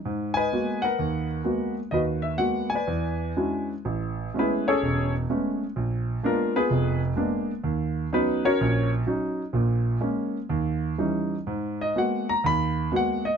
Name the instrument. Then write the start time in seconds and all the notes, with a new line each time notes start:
grand piano
0.05 G#2
0.34 B4 D#5 G#5
0.52 G#3 A#3 B3 F#4
0.82 A#4 B4 F#5
0.99 D#2
1.44 G#3 A#3 B3 F#4
1.91 D#2 F#4 B4 D#5
2.22 E5
2.38 G#3 A#3 B3 F#4 F#5
2.70 G#5
2.75 B4 D5
2.87 E2
3.37 G#3 C#4 D4 E4 F#4
3.85 A1
4.34 G#3 A3 B3 C#4
4.39 B3 E4 G#4 B4
4.68 C#4 G#4 A4 C#5
4.82 E1
5.30 G#3 A3 B3 C#4
5.76 A#1
6.23 G#3 A#3 B3 D4 F4 A#4
6.56 B3 F4 G#4 B4
6.70 F1
7.16 G#3 A#3 B3 D4
7.64 D#2
8.13 F#3 B3 C#4 D#4 B4
8.45 C#4 F#4 A#4 C#5
8.61 A#1
9.07 F#3 C#4 D#4
9.53 A#1 A#2
10.01 G#3 A#3 C#4
10.49 D#2
10.98 E3 G3 C#4 D#4
11.47 G#2
11.81 D#5
11.96 G#3 A#3 B3 F#4 F#5
12.29 A#5
12.44 D#2 B5
12.92 G#3 A#3 B3 F#4
12.96 F#5
13.25 D#5